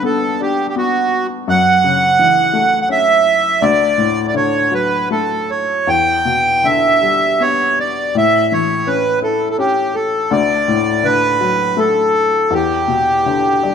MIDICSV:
0, 0, Header, 1, 3, 480
1, 0, Start_track
1, 0, Tempo, 720288
1, 982, Time_signature, 3, 2, 24, 8
1, 2895, Tempo, 759494
1, 5295, Tempo, 726392
1, 7695, Tempo, 751880
1, 8954, End_track
2, 0, Start_track
2, 0, Title_t, "Accordion"
2, 0, Program_c, 0, 21
2, 34, Note_on_c, 0, 69, 58
2, 275, Note_off_c, 0, 69, 0
2, 280, Note_on_c, 0, 67, 58
2, 447, Note_off_c, 0, 67, 0
2, 457, Note_on_c, 0, 67, 39
2, 501, Note_off_c, 0, 67, 0
2, 516, Note_on_c, 0, 66, 65
2, 845, Note_off_c, 0, 66, 0
2, 995, Note_on_c, 0, 78, 77
2, 1862, Note_off_c, 0, 78, 0
2, 1876, Note_on_c, 0, 78, 49
2, 1923, Note_off_c, 0, 78, 0
2, 1942, Note_on_c, 0, 76, 78
2, 2410, Note_on_c, 0, 74, 75
2, 2428, Note_off_c, 0, 76, 0
2, 2841, Note_off_c, 0, 74, 0
2, 2851, Note_on_c, 0, 74, 51
2, 2895, Note_off_c, 0, 74, 0
2, 2907, Note_on_c, 0, 73, 66
2, 3144, Note_off_c, 0, 73, 0
2, 3147, Note_on_c, 0, 71, 64
2, 3365, Note_off_c, 0, 71, 0
2, 3382, Note_on_c, 0, 69, 58
2, 3629, Note_on_c, 0, 73, 51
2, 3630, Note_off_c, 0, 69, 0
2, 3870, Note_on_c, 0, 79, 72
2, 3873, Note_off_c, 0, 73, 0
2, 4352, Note_on_c, 0, 76, 74
2, 4363, Note_off_c, 0, 79, 0
2, 4834, Note_on_c, 0, 73, 67
2, 4841, Note_off_c, 0, 76, 0
2, 5072, Note_off_c, 0, 73, 0
2, 5077, Note_on_c, 0, 74, 60
2, 5310, Note_off_c, 0, 74, 0
2, 5316, Note_on_c, 0, 76, 74
2, 5552, Note_off_c, 0, 76, 0
2, 5552, Note_on_c, 0, 73, 69
2, 5778, Note_on_c, 0, 71, 66
2, 5784, Note_off_c, 0, 73, 0
2, 5991, Note_off_c, 0, 71, 0
2, 6016, Note_on_c, 0, 69, 61
2, 6183, Note_off_c, 0, 69, 0
2, 6193, Note_on_c, 0, 69, 43
2, 6239, Note_off_c, 0, 69, 0
2, 6250, Note_on_c, 0, 67, 69
2, 6490, Note_on_c, 0, 69, 62
2, 6493, Note_off_c, 0, 67, 0
2, 6734, Note_on_c, 0, 74, 73
2, 6736, Note_off_c, 0, 69, 0
2, 7216, Note_on_c, 0, 71, 82
2, 7230, Note_off_c, 0, 74, 0
2, 7705, Note_on_c, 0, 69, 64
2, 7710, Note_off_c, 0, 71, 0
2, 8181, Note_on_c, 0, 67, 63
2, 8184, Note_off_c, 0, 69, 0
2, 8954, Note_off_c, 0, 67, 0
2, 8954, End_track
3, 0, Start_track
3, 0, Title_t, "Felt piano"
3, 0, Program_c, 1, 0
3, 0, Control_c, 1, 64, 127
3, 0, Note_on_c, 1, 43, 49
3, 0, Note_on_c, 1, 50, 39
3, 20, Note_on_c, 1, 59, 40
3, 269, Note_on_c, 1, 62, 38
3, 496, Note_off_c, 1, 59, 0
3, 506, Note_on_c, 1, 59, 45
3, 716, Note_off_c, 1, 50, 0
3, 956, Note_off_c, 1, 43, 0
3, 966, Note_off_c, 1, 62, 0
3, 971, Note_off_c, 1, 59, 0
3, 984, Note_on_c, 1, 42, 51
3, 990, Control_c, 1, 64, 0
3, 1108, Control_c, 1, 64, 127
3, 1226, Note_on_c, 1, 49, 37
3, 1461, Note_on_c, 1, 52, 41
3, 1688, Note_on_c, 1, 57, 40
3, 1925, Note_on_c, 1, 61, 49
3, 2140, Note_off_c, 1, 49, 0
3, 2380, Note_off_c, 1, 42, 0
3, 2382, Note_off_c, 1, 52, 0
3, 2383, Note_off_c, 1, 57, 0
3, 2391, Note_off_c, 1, 61, 0
3, 2412, Note_on_c, 1, 38, 56
3, 2414, Control_c, 1, 64, 0
3, 2517, Control_c, 1, 64, 127
3, 2650, Note_on_c, 1, 45, 40
3, 2892, Note_on_c, 1, 50, 40
3, 3129, Note_on_c, 1, 54, 38
3, 3376, Note_on_c, 1, 57, 39
3, 3594, Note_off_c, 1, 45, 0
3, 3835, Note_off_c, 1, 50, 0
3, 3838, Note_off_c, 1, 54, 0
3, 3839, Note_off_c, 1, 38, 0
3, 3848, Note_off_c, 1, 57, 0
3, 3859, Note_on_c, 1, 40, 47
3, 3870, Control_c, 1, 64, 0
3, 3995, Control_c, 1, 64, 127
3, 4100, Note_on_c, 1, 47, 38
3, 4345, Note_on_c, 1, 50, 39
3, 4582, Note_on_c, 1, 55, 38
3, 4826, Note_on_c, 1, 59, 39
3, 5033, Note_off_c, 1, 47, 0
3, 5268, Note_off_c, 1, 40, 0
3, 5270, Note_off_c, 1, 50, 0
3, 5271, Note_off_c, 1, 55, 0
3, 5282, Note_off_c, 1, 59, 0
3, 5300, Note_on_c, 1, 45, 53
3, 5302, Control_c, 1, 64, 0
3, 5414, Control_c, 1, 64, 127
3, 5545, Note_on_c, 1, 52, 39
3, 5776, Note_on_c, 1, 61, 41
3, 6008, Note_on_c, 1, 64, 37
3, 6236, Note_off_c, 1, 61, 0
3, 6246, Note_on_c, 1, 61, 49
3, 6460, Note_off_c, 1, 52, 0
3, 6701, Note_off_c, 1, 45, 0
3, 6706, Note_off_c, 1, 64, 0
3, 6713, Note_off_c, 1, 61, 0
3, 6727, Note_on_c, 1, 38, 59
3, 6734, Control_c, 1, 64, 0
3, 6828, Control_c, 1, 64, 127
3, 6973, Note_on_c, 1, 45, 47
3, 7207, Note_on_c, 1, 50, 46
3, 7452, Note_on_c, 1, 54, 45
3, 7691, Note_on_c, 1, 57, 47
3, 7904, Note_off_c, 1, 45, 0
3, 8137, Note_off_c, 1, 50, 0
3, 8140, Note_off_c, 1, 38, 0
3, 8143, Note_off_c, 1, 54, 0
3, 8149, Note_off_c, 1, 57, 0
3, 8160, Note_on_c, 1, 40, 53
3, 8173, Control_c, 1, 64, 0
3, 8278, Control_c, 1, 64, 127
3, 8399, Note_on_c, 1, 47, 37
3, 8644, Note_on_c, 1, 50, 41
3, 8881, Note_on_c, 1, 55, 37
3, 8881, Note_on_c, 1, 74, 47
3, 8954, Note_off_c, 1, 40, 0
3, 8954, Note_off_c, 1, 47, 0
3, 8954, Note_off_c, 1, 50, 0
3, 8954, Note_off_c, 1, 55, 0
3, 8954, Note_off_c, 1, 74, 0
3, 8954, End_track
0, 0, End_of_file